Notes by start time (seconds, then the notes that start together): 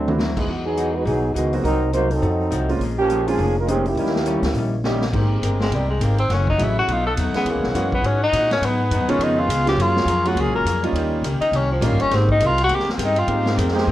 Already playing: D2
0.07 A3 C4 D4 E4 F#4, mid tom
0.18 D3 F#3 C4 E4, snare
0.37 G#3 B3 D#4 E4 G#4, kick, crash
0.46 E2 E3 G#3 D#4 F#4
0.65 F#3 B3 D#4 G#4
0.76 E3 G#3 D#4 F#4, closed hi-hat
0.94 G#3 D#4 F#4 B4
1.04 B1 E3 F#3 G#3 B3 D#4 F#4 G#4, open hi-hat
1.34 C#2 D#3 E3 G#3 B3 D#4 F#4, closed hi-hat
1.53 F#3 A#3 C4 D#4 F#4, open hi-hat
1.63 C2 C3 F#3 A#3 C4 D#4 A#4, open hi-hat
1.93 C3 F#3 A#3 D#4 F#4 C5, closed hi-hat
2.11 F#3 C4 D#4 A4, open hi-hat
2.22 F2 F3 A3 D#4 F#4, open hi-hat
2.51 C2 F3 A3 D#4 F#4, closed hi-hat
2.69 G#3 A#3 C4 C#4 F4, open hi-hat
2.79 A#1 A#2 F3 G#3, open hi-hat
2.83 C#4
2.98 F3 A#3 C#4 G4
3.09 A#2 F3 G#3 C#4, closed hi-hat
3.27 F3 G#3 A#3 C4 C#4 F4 G#4, open hi-hat
3.37 F1 A#2 F3 G#3, open hi-hat
3.42 C#4
3.57 G#3 C#4 F4 A#4
3.67 A#2 D#3 F3 G#3 A#3 C4 C#4 D#4 G4, closed hi-hat
3.86 A#3 C#4 E4 G4, open hi-hat
3.95 D#2 D#3 G3 A#3 C#4 D#4, open hi-hat
3.99 C#4 E4
4.06 snare
4.16 snare
4.26 D#3 G3 C#4 E4, closed hi-hat
4.42 D2, snare, open hi-hat
4.54 A#1 D#3 G3, open hi-hat
4.58 C#4 E4
4.84 D#3 G3 A#3 C#4 D#4 E4 G4, snare
5.01 snare
5.12 G#1 G#3 A#3 C4 D#4 G4 A#4 G5, kick, crash
5.41 G1 G#3 C4 G4 A#4, hi-hat pedal, ride
5.60 G#3, snare
5.70 C2 G#3 C4 G4 A#4, ride
5.75 G3
5.90 G#3
5.99 G#1 G#3 C4 G4 A#4, hi-hat pedal, ride
6.04 A#3
6.18 C4, ride
6.29 F#1 F#2 E3 E4 C#5 F#5, snare, ride
6.33 A3 C#4
6.47 D#4, kick
6.58 A1 F#2 E3 F#3 A3 C#4 E4 G#4, hi-hat pedal, ride
6.63 E4
6.79 F#4
6.87 B1 B2 F#3 A3 D#4 A4 B4, ride
6.92 F4
7.06 A4
7.17 D#2 B2 F#3 A3 D#4, hi-hat pedal, ride
7.34 E3 G#3 B3 C#4 G#4, muted upright bass stroke, snare, ride
7.45 E2 E3 G#3 C#4 F#4 G#4 C#5, ride
7.50 A#3
7.55 C#2
7.63 B1, snare
7.74 F#2 E3 G#3 B3 C#4 F#4, hi-hat pedal, ride
7.92 B3, kick
8.02 G#2 E3 G#3 C#4 F#4, ride
8.07 C#4
8.23 D#4
8.33 A#2 E3 G#3 C#4 F#4, hi-hat pedal, ride
8.51 C#4, snare, ride
8.61 G#2 F#3 B3 D#4 B4, ride
8.65 B3
8.91 F#2 G#2 F#3 B3 D#4, hi-hat pedal, ride
9.00 D#2
9.08 B1 D#3 G#3 B3 C#4 F4, ride
9.19 F2 C#3 G#3 C#4 F5, ride
9.23 B3 D#4 F4
9.40 F4
9.48 C#2 C#3 G#3 B3 F4, hi-hat pedal, ride
9.66 F#3 G#3 A#3 C#4 F4 G4, snare, ride
9.77 F#2 F#3 A#3 C#4 F4 G#4 A#4 C#5, ride
9.82 F4
9.96 snare
10.05 F2 F#3 A#3 F4 G#4, hi-hat pedal, ride
10.25 F#3 G#3 A#3 C#4 F4 F#4, ride
10.35 C#2 F#3 A#3 F4 G#4, ride
10.40 G#4
10.46 A#1
10.55 F#1 A#4
10.65 F2 F#3 A#3 F4 G#4, hi-hat pedal, ride
10.83 G3 A#3 C#4 D#4 F4, ride
10.92 D#2 D#3 D#4 A#4 C#5 G5, ride
10.97 A#3 C#4 G4
11.21 C#2 D#3 A#3 C#4 G4, hi-hat pedal, ride
11.40 D#4, muted upright bass stroke, ride
11.51 C2 D#3 A#3 C#4 G4, ride
11.56 C#4
11.72 F3
11.81 A#1 D#3 G3 A#3 C#4 D#4 F4 G4, hi-hat pedal, ride
11.85 A#3
11.91 G1
12.00 D#1 C#4, ride
12.10 G#1 G#3 A#3 C4 D#4 G4 A#4 G5, snare, ride
12.15 C4
12.29 D#4, kick
12.39 C2 G#3 C4 G4 A#4, hi-hat pedal, ride
12.46 F4
12.58 ride
12.64 F#4
12.68 D#2 G#3 C4 G4 A#4, ride
12.75 G4
12.79 snare
12.87 muted upright bass stroke, snare
12.91 A#3
12.98 G2 G#3 C4 G4 A#4, hi-hat pedal, ride
13.05 D#4
13.16 F4, ride
13.27 G#2 G#3 A#3 C4 D#4 G4 A#4, ride
13.46 snare
13.56 F2 G#3 C4 G4 A#4, hi-hat pedal, ride
13.68 snare
13.73 G#3 A#3 C4 D#4 G4
13.78 snare
13.86 G2 G#3 C4 G4 A#4